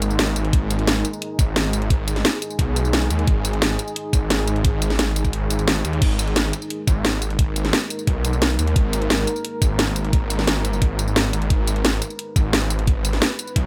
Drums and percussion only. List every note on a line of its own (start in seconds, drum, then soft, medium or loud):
0.02 closed hi-hat medium
0.02 tambourine medium
0.10 tambourine soft
0.19 snare loud
0.19 closed hi-hat medium
0.27 closed hi-hat soft
0.36 closed hi-hat medium
0.36 tambourine medium
0.45 closed hi-hat soft
0.53 kick loud
0.53 closed hi-hat medium
0.70 closed hi-hat medium
0.70 tambourine medium
0.79 closed hi-hat soft
0.87 snare loud
0.87 closed hi-hat medium
1.05 closed hi-hat medium
1.05 tambourine medium
1.13 tambourine soft
1.22 closed hi-hat medium
1.39 kick loud
1.39 closed hi-hat medium
1.39 tambourine medium
1.56 snare loud
1.56 closed hi-hat medium
1.65 closed hi-hat soft
1.73 closed hi-hat medium
1.73 tambourine medium
1.82 closed hi-hat soft
1.90 kick loud
1.90 closed hi-hat medium
2.08 closed hi-hat medium
2.08 tambourine medium
2.16 snare soft
2.16 closed hi-hat soft
2.25 snare loud
2.25 closed hi-hat medium
2.42 closed hi-hat medium
2.42 tambourine medium
2.51 tambourine soft
2.59 kick loud
2.59 closed hi-hat medium
2.76 closed hi-hat medium
2.76 tambourine medium
2.85 tambourine soft
2.93 snare loud
2.93 closed hi-hat medium
3.02 closed hi-hat soft
3.10 closed hi-hat medium
3.10 tambourine medium
3.19 closed hi-hat soft
3.27 kick loud
3.27 closed hi-hat medium
3.45 closed hi-hat medium
3.45 tambourine medium
3.53 closed hi-hat soft
3.62 snare loud
3.62 closed hi-hat medium
3.79 closed hi-hat medium
3.79 tambourine medium
3.88 tambourine soft
3.96 closed hi-hat medium
4.13 kick loud
4.13 closed hi-hat medium
4.13 tambourine medium
4.30 snare loud
4.30 closed hi-hat medium
4.39 closed hi-hat soft
4.47 closed hi-hat medium
4.47 tambourine medium
4.56 closed hi-hat soft
4.65 kick loud
4.65 closed hi-hat loud
4.82 closed hi-hat medium
4.82 tambourine medium
4.90 snare soft
4.90 closed hi-hat soft
4.99 snare loud
4.99 closed hi-hat loud
5.16 closed hi-hat medium
5.16 tambourine medium
5.25 kick medium
5.25 tambourine soft
5.33 closed hi-hat medium
5.50 closed hi-hat medium
5.50 tambourine medium
5.59 closed hi-hat soft
5.59 tambourine soft
5.68 snare loud
5.68 closed hi-hat loud
5.76 closed hi-hat soft
5.85 closed hi-hat medium
5.85 tambourine medium
5.93 closed hi-hat soft
6.02 kick loud
6.02 closed hi-hat medium
6.02 crash medium
6.19 closed hi-hat medium
6.19 tambourine medium
6.28 closed hi-hat soft
6.36 snare loud
6.36 closed hi-hat loud
6.53 closed hi-hat medium
6.53 tambourine medium
6.62 tambourine soft
6.70 closed hi-hat medium
6.87 kick loud
6.87 closed hi-hat medium
6.87 tambourine medium
7.05 snare loud
7.05 closed hi-hat loud
7.13 closed hi-hat soft
7.22 closed hi-hat medium
7.22 tambourine medium
7.30 closed hi-hat soft
7.39 kick loud
7.39 closed hi-hat loud
7.56 closed hi-hat medium
7.56 tambourine medium
7.65 snare soft
7.65 closed hi-hat soft
7.73 snare loud
7.73 closed hi-hat loud
7.90 closed hi-hat medium
7.90 tambourine medium
7.99 tambourine soft
8.07 kick loud
8.07 closed hi-hat medium
8.25 closed hi-hat medium
8.25 tambourine medium
8.33 tambourine soft
8.42 snare loud
8.42 closed hi-hat loud
8.50 closed hi-hat soft
8.59 closed hi-hat medium
8.59 tambourine medium
8.67 closed hi-hat soft
8.76 kick loud
8.76 closed hi-hat loud
8.93 closed hi-hat medium
8.93 tambourine medium
9.02 closed hi-hat soft
9.10 snare loud
9.10 closed hi-hat loud
9.27 closed hi-hat medium
9.27 tambourine medium
9.36 tambourine soft
9.45 closed hi-hat loud
9.62 kick loud
9.62 closed hi-hat medium
9.62 tambourine medium
9.79 snare loud
9.79 closed hi-hat medium
9.87 closed hi-hat soft
9.96 closed hi-hat medium
9.96 tambourine medium
10.05 closed hi-hat soft
10.13 kick loud
10.13 closed hi-hat medium
10.30 closed hi-hat medium
10.30 tambourine medium
10.39 snare soft
10.39 closed hi-hat soft
10.47 snare loud
10.47 closed hi-hat loud
10.65 closed hi-hat medium
10.65 tambourine medium
10.73 tambourine soft
10.82 kick loud
10.82 closed hi-hat medium
10.99 closed hi-hat medium
10.99 tambourine medium
11.08 tambourine soft
11.16 snare loud
11.16 closed hi-hat medium
11.25 closed hi-hat soft
11.33 closed hi-hat medium
11.33 tambourine medium
11.42 closed hi-hat soft
11.50 kick loud
11.50 closed hi-hat medium
11.67 closed hi-hat medium
11.67 tambourine medium
11.76 closed hi-hat soft
11.85 snare loud
11.85 closed hi-hat medium
12.02 closed hi-hat medium
12.02 tambourine medium
12.10 tambourine soft
12.19 closed hi-hat medium
12.36 kick loud
12.36 closed hi-hat medium
12.36 tambourine medium
12.53 snare loud
12.53 closed hi-hat medium
12.62 closed hi-hat soft
12.70 closed hi-hat medium
12.70 tambourine medium
12.79 closed hi-hat soft
12.87 kick loud
12.87 closed hi-hat medium
13.05 closed hi-hat medium
13.05 tambourine medium
13.13 snare soft
13.13 closed hi-hat soft
13.22 snare loud
13.22 closed hi-hat medium
13.39 closed hi-hat medium
13.39 tambourine medium
13.47 tambourine soft
13.56 kick loud
13.56 closed hi-hat medium